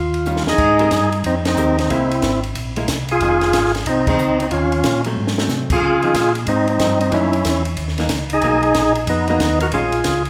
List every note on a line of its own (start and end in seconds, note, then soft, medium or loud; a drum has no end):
0.00 0.43 D#2 medium
0.00 0.43 F4 medium
0.14 ride soft
0.25 0.45 D#3 soft
0.25 0.45 G3 medium
0.25 0.46 C#4 medium
0.25 0.46 F4 medium
0.25 hi-hat pedal soft
0.36 snare soft
0.46 0.52 D#2 soft
0.46 1.10 D#4 medium
0.46 1.10 G#4 loud
0.46 snare medium
0.58 0.90 G#2 medium
0.58 kick medium
0.58 crash medium
0.79 0.90 G#3 medium
0.79 0.91 C4 medium
0.79 0.91 G4 medium
0.79 0.91 A#4 medium
0.79 ride soft
0.91 1.23 G2 medium
0.91 kick soft
0.91 snare medium
0.91 hi-hat pedal medium
0.91 ride medium
1.12 ride soft
1.24 1.56 F2 medium
1.24 1.35 C4 medium
1.24 1.35 D#4 medium
1.24 kick soft
1.24 ride medium
1.45 1.77 C4 medium
1.45 1.78 D#4 medium
1.45 snare medium
1.45 ride medium
1.57 1.89 D#2 medium
1.57 1.76 G#3 soft
1.57 1.76 C4 medium
1.57 1.77 G4 medium
1.57 1.77 A#4 medium
1.57 hi-hat pedal medium
1.78 1.89 C4 medium
1.78 1.90 D#4 medium
1.78 snare soft
1.78 ride soft
1.90 2.22 C2 medium
1.90 2.09 G#3 medium
1.90 2.09 A#3 medium
1.90 2.40 C4 medium
1.90 2.40 E4 medium
1.90 2.10 E4 medium
1.90 kick soft
1.90 ride medium
2.11 ride soft
2.22 2.55 G#1 medium
2.22 kick soft
2.22 snare medium
2.22 hi-hat pedal soft
2.22 ride medium
2.43 ride soft
2.55 2.87 A#1 medium
2.55 kick soft
2.55 ride medium
2.76 2.87 G#3 medium
2.76 2.88 A#3 medium
2.76 2.88 E4 medium
2.76 ride soft
2.88 3.20 C2 medium
2.88 kick soft
2.88 snare medium
2.88 hi-hat pedal medium
2.88 ride medium
3.08 3.72 F4 medium
3.08 3.72 G#4 loud
3.08 ride soft
3.20 3.53 F1 medium
3.20 3.41 D#3 soft
3.20 3.41 G#3 medium
3.20 3.41 C4 soft
3.20 kick soft
3.20 ride medium
3.41 snare soft
3.41 ride soft
3.53 3.85 G#1 medium
3.53 kick soft
3.53 snare medium
3.53 hi-hat pedal soft
3.53 ride medium
3.65 snare soft
3.75 snare soft
3.75 ride soft
3.86 4.18 C2 medium
3.86 4.07 C4 medium
3.86 4.06 D#4 medium
3.86 kick soft
3.86 ride medium
4.07 4.18 D#3 medium
4.07 4.18 G#3 medium
4.07 4.39 C4 medium
4.07 4.19 C4 medium
4.07 4.40 D#4 medium
4.07 kick medium
4.07 crash medium
4.18 4.50 C#2 medium
4.18 hi-hat pedal medium
4.40 4.47 C4 medium
4.40 4.46 D#4 medium
4.40 ride soft
4.51 4.83 D#2 medium
4.51 5.02 C#4 medium
4.51 5.01 F4 medium
4.51 kick soft
4.51 ride medium
4.72 ride soft
4.84 5.16 A#2 loud
4.84 kick soft
4.84 snare medium
4.84 hi-hat pedal medium
4.84 ride medium
5.04 5.36 F#3 medium
5.04 5.37 A3 medium
5.04 5.37 C4 medium
5.04 ride soft
5.17 5.49 G#2 medium
5.27 snare medium
5.38 5.80 F#3 medium
5.38 5.81 A3 medium
5.38 5.81 C4 medium
5.38 snare medium
5.49 5.68 C3 medium
5.49 snare soft
5.49 hi-hat pedal medium
5.70 5.76 C3 soft
5.70 6.33 F4 medium
5.70 6.33 G#4 loud
5.70 kick medium
5.70 crash medium
5.81 6.13 C#3 medium
5.81 kick soft
6.02 6.14 F3 medium
6.02 6.14 C4 medium
6.02 6.14 D#4 medium
6.02 ride soft
6.14 6.46 A#2 medium
6.14 kick soft
6.14 snare medium
6.14 hi-hat pedal soft
6.14 ride medium
6.35 ride soft
6.47 6.78 G#2 medium
6.47 6.68 C4 medium
6.47 6.68 D#4 medium
6.47 kick soft
6.47 ride medium
6.67 6.99 C4 medium
6.67 6.99 D#4 medium
6.67 ride soft
6.79 7.11 G2 medium
6.79 6.99 F3 soft
6.79 6.99 C4 medium
6.79 6.99 D#4 medium
6.79 kick soft
6.79 snare medium
6.79 hi-hat pedal medium
6.79 ride medium
7.01 7.12 C4 medium
7.01 7.12 D#4 medium
7.01 ride soft
7.12 7.44 F#2 medium
7.12 7.31 E3 medium
7.12 7.31 A#3 medium
7.12 7.63 C#4 medium
7.12 7.31 D#4 medium
7.12 7.63 E4 medium
7.12 kick soft
7.12 ride medium
7.33 ride soft
7.45 7.76 E2 medium
7.45 kick soft
7.45 snare medium
7.45 hi-hat pedal medium
7.45 ride medium
7.65 ride soft
7.77 8.09 D#2 medium
7.77 kick soft
7.77 ride medium
7.88 snare soft
7.98 8.09 E3 medium
7.98 8.09 A#3 medium
7.98 8.10 D#4 medium
7.98 snare soft
7.98 ride soft
8.09 8.41 C#2 medium
8.09 kick soft
8.09 snare medium
8.09 hi-hat pedal medium
8.09 ride medium
8.30 8.93 D#4 medium
8.30 ride medium
8.34 8.93 G#4 loud
8.41 8.74 B1 medium
8.41 8.62 F#3 medium
8.41 8.62 A#3 medium
8.41 8.62 D#4 medium
8.41 kick soft
8.41 ride medium
8.63 ride soft
8.74 9.06 A#1 medium
8.74 kick soft
8.74 snare medium
8.74 hi-hat pedal medium
8.74 ride medium
8.95 ride soft
9.07 9.39 F2 medium
9.07 9.28 B3 medium
9.07 9.28 D#4 medium
9.07 kick soft
9.07 ride medium
9.28 9.39 F#3 medium
9.28 9.40 A#3 medium
9.28 9.59 B3 medium
9.28 9.59 D#4 medium
9.28 9.40 D#4 medium
9.28 ride soft
9.40 9.71 D#2 medium
9.40 kick soft
9.40 snare medium
9.40 hi-hat pedal medium
9.40 ride medium
9.60 9.68 F#4 medium
9.60 9.66 A#4 loud
9.60 ride medium
9.72 10.04 A#1 medium
9.72 9.92 G#3 medium
9.72 9.92 C#4 medium
9.72 10.23 F4 medium
9.72 9.92 F4 medium
9.72 10.23 G#4 medium
9.72 kick soft
9.72 ride medium
9.92 ride soft
10.04 10.30 C#2 medium
10.04 kick soft
10.04 snare medium
10.04 hi-hat pedal soft
10.04 ride medium
10.25 ride soft